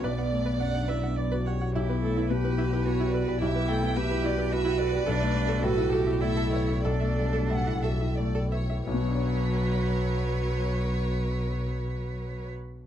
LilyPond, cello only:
\new Staff \with { instrumentName = "Cello" } { \time 3/4 \key b \minor \tempo 4 = 102 b2 r4 | e'4 g'4 fis'4 | e'4 g'4 fis'4 | d'4 fis'4 e'4 |
d'2 r4 | b'2.~ | b'2. | }